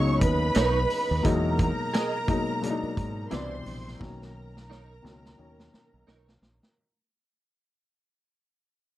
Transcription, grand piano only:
0, 0, Header, 1, 2, 480
1, 0, Start_track
1, 0, Key_signature, 5, "major"
1, 0, Tempo, 688863
1, 870, Time_signature, 4, 2, 24, 8
1, 6252, End_track
2, 0, Start_track
2, 0, Title_t, "Grand piano"
2, 0, Program_c, 0, 0
2, 0, Control_c, 0, 64, 127
2, 0, Note_on_c, 0, 49, 86
2, 0, Note_on_c, 0, 54, 79
2, 0, Note_on_c, 0, 58, 72
2, 0, Note_on_c, 0, 59, 82
2, 0, Note_on_c, 0, 61, 77
2, 0, Note_on_c, 0, 63, 96
2, 518, Note_off_c, 0, 49, 0
2, 521, Note_off_c, 0, 54, 0
2, 522, Note_off_c, 0, 61, 0
2, 526, Note_off_c, 0, 63, 0
2, 527, Note_off_c, 0, 59, 0
2, 854, Note_on_c, 0, 47, 84
2, 859, Note_on_c, 0, 54, 82
2, 866, Note_on_c, 0, 56, 81
2, 870, Note_off_c, 0, 58, 0
2, 870, Note_on_c, 0, 58, 83
2, 875, Note_on_c, 0, 63, 93
2, 880, Control_c, 0, 64, 0
2, 1013, Control_c, 0, 64, 127
2, 1315, Note_off_c, 0, 47, 0
2, 1317, Note_off_c, 0, 54, 0
2, 1321, Note_off_c, 0, 56, 0
2, 1323, Note_off_c, 0, 58, 0
2, 1325, Note_off_c, 0, 63, 0
2, 1583, Note_on_c, 0, 47, 75
2, 1586, Note_on_c, 0, 54, 76
2, 1592, Note_on_c, 0, 56, 73
2, 1596, Note_on_c, 0, 58, 76
2, 1600, Note_on_c, 0, 63, 90
2, 1750, Note_off_c, 0, 47, 0
2, 1752, Note_off_c, 0, 54, 0
2, 1755, Note_off_c, 0, 56, 0
2, 1757, Note_off_c, 0, 58, 0
2, 1759, Note_off_c, 0, 63, 0
2, 1822, Note_on_c, 0, 47, 89
2, 1824, Note_on_c, 0, 54, 82
2, 1828, Note_on_c, 0, 56, 77
2, 1832, Note_on_c, 0, 58, 80
2, 1838, Note_on_c, 0, 62, 80
2, 1883, Note_on_c, 0, 63, 96
2, 1887, Note_off_c, 0, 62, 0
2, 2302, Note_on_c, 0, 48, 97
2, 2305, Note_on_c, 0, 52, 88
2, 2306, Note_off_c, 0, 47, 0
2, 2307, Note_off_c, 0, 54, 0
2, 2309, Note_off_c, 0, 56, 0
2, 2311, Note_off_c, 0, 58, 0
2, 2312, Note_on_c, 0, 55, 86
2, 2316, Note_on_c, 0, 47, 91
2, 2319, Control_c, 0, 64, 0
2, 2320, Note_on_c, 0, 62, 103
2, 2337, Note_off_c, 0, 63, 0
2, 2437, Control_c, 0, 64, 127
2, 2705, Note_off_c, 0, 48, 0
2, 2707, Note_off_c, 0, 52, 0
2, 2711, Note_off_c, 0, 55, 0
2, 2713, Note_off_c, 0, 47, 0
2, 2715, Note_off_c, 0, 62, 0
2, 2781, Note_on_c, 0, 47, 87
2, 2788, Note_on_c, 0, 51, 76
2, 2789, Note_on_c, 0, 54, 75
2, 2795, Note_on_c, 0, 58, 79
2, 2799, Note_on_c, 0, 61, 95
2, 2800, Control_c, 0, 64, 0
2, 2915, Control_c, 0, 64, 127
2, 3239, Note_off_c, 0, 47, 0
2, 3242, Note_off_c, 0, 51, 0
2, 3243, Note_off_c, 0, 54, 0
2, 3246, Note_off_c, 0, 58, 0
2, 3248, Note_off_c, 0, 61, 0
2, 3498, Note_on_c, 0, 47, 77
2, 3502, Note_on_c, 0, 51, 70
2, 3511, Note_on_c, 0, 54, 71
2, 3512, Note_on_c, 0, 58, 68
2, 3517, Note_on_c, 0, 61, 83
2, 3669, Note_off_c, 0, 47, 0
2, 3670, Note_off_c, 0, 51, 0
2, 3675, Note_off_c, 0, 54, 0
2, 3675, Note_off_c, 0, 58, 0
2, 3678, Note_off_c, 0, 61, 0
2, 3740, Note_on_c, 0, 47, 80
2, 3746, Note_on_c, 0, 51, 72
2, 3750, Note_on_c, 0, 54, 74
2, 3755, Note_on_c, 0, 58, 75
2, 3761, Note_on_c, 0, 61, 91
2, 4361, Note_off_c, 0, 47, 0
2, 4365, Note_off_c, 0, 51, 0
2, 4366, Note_off_c, 0, 54, 0
2, 4369, Note_off_c, 0, 58, 0
2, 4372, Note_off_c, 0, 61, 0
2, 4721, Control_c, 0, 64, 0
2, 6252, End_track
0, 0, End_of_file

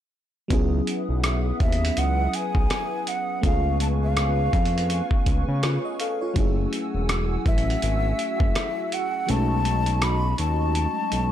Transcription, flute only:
0, 0, Header, 1, 2, 480
1, 0, Start_track
1, 0, Key_signature, 4, "minor"
1, 0, Tempo, 731707
1, 331, Time_signature, 4, 2, 24, 8
1, 7425, End_track
2, 0, Start_track
2, 0, Title_t, "Flute"
2, 0, Program_c, 0, 73
2, 1063, Note_on_c, 0, 76, 84
2, 1302, Note_on_c, 0, 78, 88
2, 1311, Note_off_c, 0, 76, 0
2, 1542, Note_on_c, 0, 80, 96
2, 1552, Note_off_c, 0, 78, 0
2, 2022, Note_on_c, 0, 78, 90
2, 2032, Note_off_c, 0, 80, 0
2, 2257, Note_off_c, 0, 78, 0
2, 2262, Note_on_c, 0, 77, 96
2, 2480, Note_off_c, 0, 77, 0
2, 2502, Note_on_c, 0, 81, 96
2, 2541, Note_off_c, 0, 81, 0
2, 2644, Note_on_c, 0, 77, 94
2, 3571, Note_off_c, 0, 77, 0
2, 4904, Note_on_c, 0, 76, 95
2, 5863, Note_on_c, 0, 78, 88
2, 5873, Note_off_c, 0, 76, 0
2, 6103, Note_on_c, 0, 81, 102
2, 6113, Note_off_c, 0, 78, 0
2, 6583, Note_on_c, 0, 83, 98
2, 6593, Note_off_c, 0, 81, 0
2, 6817, Note_off_c, 0, 83, 0
2, 6822, Note_on_c, 0, 81, 105
2, 7425, Note_off_c, 0, 81, 0
2, 7425, End_track
0, 0, End_of_file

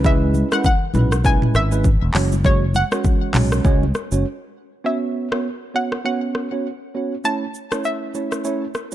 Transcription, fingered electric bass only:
0, 0, Header, 1, 2, 480
1, 0, Start_track
1, 0, Tempo, 600000
1, 37, Time_signature, 4, 2, 24, 8
1, 7158, End_track
2, 0, Start_track
2, 0, Title_t, "Fingered electric bass"
2, 0, Program_c, 0, 33
2, 0, Note_on_c, 0, 37, 112
2, 336, Note_off_c, 0, 37, 0
2, 758, Note_on_c, 0, 35, 95
2, 1087, Note_off_c, 0, 35, 0
2, 1237, Note_on_c, 0, 32, 97
2, 1567, Note_off_c, 0, 32, 0
2, 1617, Note_on_c, 0, 28, 92
2, 1704, Note_off_c, 0, 28, 0
2, 1717, Note_on_c, 0, 30, 105
2, 2256, Note_off_c, 0, 30, 0
2, 2676, Note_on_c, 0, 35, 93
2, 2885, Note_off_c, 0, 35, 0
2, 2917, Note_on_c, 0, 37, 101
2, 3126, Note_off_c, 0, 37, 0
2, 3296, Note_on_c, 0, 30, 92
2, 3383, Note_off_c, 0, 30, 0
2, 7158, End_track
0, 0, End_of_file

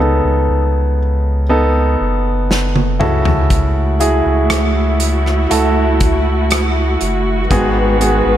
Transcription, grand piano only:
0, 0, Header, 1, 2, 480
1, 0, Start_track
1, 0, Tempo, 1000000
1, 1685, Time_signature, 4, 2, 24, 8
1, 4019, End_track
2, 0, Start_track
2, 0, Title_t, "Grand piano"
2, 0, Program_c, 0, 0
2, 0, Control_c, 0, 64, 127
2, 0, Note_on_c, 0, 49, 58
2, 0, Note_on_c, 0, 59, 58
2, 0, Note_on_c, 0, 63, 53
2, 0, Note_on_c, 0, 69, 72
2, 1, Note_off_c, 0, 69, 0
2, 1, Note_on_c, 0, 69, 68
2, 464, Note_off_c, 0, 49, 0
2, 685, Note_off_c, 0, 59, 0
2, 687, Note_off_c, 0, 63, 0
2, 687, Note_off_c, 0, 69, 0
2, 717, Note_on_c, 0, 59, 68
2, 718, Note_on_c, 0, 63, 61
2, 720, Note_on_c, 0, 69, 80
2, 1435, Note_off_c, 0, 69, 0
2, 1438, Note_on_c, 0, 64, 68
2, 1440, Note_on_c, 0, 66, 66
2, 1441, Note_off_c, 0, 59, 0
2, 1441, Note_off_c, 0, 63, 0
2, 1441, Note_on_c, 0, 49, 62
2, 1442, Note_on_c, 0, 69, 76
2, 1452, Control_c, 0, 64, 0
2, 1531, Control_c, 0, 64, 127
2, 1897, Note_off_c, 0, 64, 0
2, 1898, Note_off_c, 0, 66, 0
2, 1900, Note_off_c, 0, 69, 0
2, 1920, Note_on_c, 0, 64, 67
2, 1922, Note_on_c, 0, 66, 53
2, 1924, Note_on_c, 0, 68, 74
2, 2144, Note_off_c, 0, 49, 0
2, 2606, Note_off_c, 0, 64, 0
2, 2608, Note_off_c, 0, 66, 0
2, 2608, Note_off_c, 0, 68, 0
2, 2642, Note_on_c, 0, 64, 60
2, 2643, Note_on_c, 0, 66, 62
2, 2646, Note_on_c, 0, 69, 83
2, 3555, Note_off_c, 0, 64, 0
2, 3556, Note_off_c, 0, 66, 0
2, 3557, Note_off_c, 0, 69, 0
2, 3604, Note_on_c, 0, 59, 71
2, 3605, Note_on_c, 0, 51, 63
2, 3606, Note_on_c, 0, 44, 67
2, 3606, Note_on_c, 0, 66, 68
2, 3607, Note_on_c, 0, 68, 79
2, 3610, Control_c, 0, 64, 0
2, 3697, Control_c, 0, 64, 127
2, 3833, Note_off_c, 0, 59, 0
2, 3833, Note_off_c, 0, 66, 0
2, 3834, Note_off_c, 0, 68, 0
2, 3843, Note_on_c, 0, 59, 58
2, 3844, Note_on_c, 0, 66, 60
2, 3848, Note_on_c, 0, 68, 69
2, 4019, Note_off_c, 0, 44, 0
2, 4019, Note_off_c, 0, 51, 0
2, 4019, Note_off_c, 0, 59, 0
2, 4019, Note_off_c, 0, 66, 0
2, 4019, Note_off_c, 0, 68, 0
2, 4019, End_track
0, 0, End_of_file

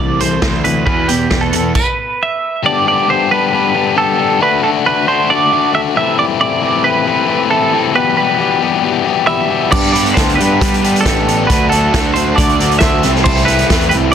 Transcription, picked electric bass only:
0, 0, Header, 1, 2, 480
1, 0, Start_track
1, 0, Tempo, 442804
1, 939, Time_signature, 4, 2, 24, 8
1, 15334, End_track
2, 0, Start_track
2, 0, Title_t, "Picked electric bass"
2, 0, Program_c, 0, 34
2, 0, Note_on_c, 0, 36, 102
2, 407, Note_off_c, 0, 36, 0
2, 460, Note_on_c, 0, 38, 86
2, 888, Note_off_c, 0, 38, 0
2, 934, Note_on_c, 0, 40, 91
2, 1365, Note_off_c, 0, 40, 0
2, 1427, Note_on_c, 0, 40, 93
2, 1853, Note_off_c, 0, 40, 0
2, 10546, Note_on_c, 0, 43, 94
2, 10970, Note_off_c, 0, 43, 0
2, 11025, Note_on_c, 0, 38, 81
2, 11235, Note_off_c, 0, 38, 0
2, 11264, Note_on_c, 0, 43, 78
2, 11474, Note_off_c, 0, 43, 0
2, 11508, Note_on_c, 0, 55, 103
2, 11931, Note_off_c, 0, 55, 0
2, 11980, Note_on_c, 0, 33, 93
2, 12406, Note_off_c, 0, 33, 0
2, 12465, Note_on_c, 0, 38, 100
2, 12889, Note_off_c, 0, 38, 0
2, 12941, Note_on_c, 0, 38, 95
2, 13368, Note_off_c, 0, 38, 0
2, 13422, Note_on_c, 0, 38, 94
2, 13848, Note_off_c, 0, 38, 0
2, 13891, Note_on_c, 0, 38, 89
2, 14108, Note_off_c, 0, 38, 0
2, 14135, Note_on_c, 0, 36, 109
2, 14779, Note_off_c, 0, 36, 0
2, 14856, Note_on_c, 0, 40, 90
2, 15072, Note_off_c, 0, 40, 0
2, 15115, Note_on_c, 0, 36, 93
2, 15316, Note_off_c, 0, 36, 0
2, 15334, End_track
0, 0, End_of_file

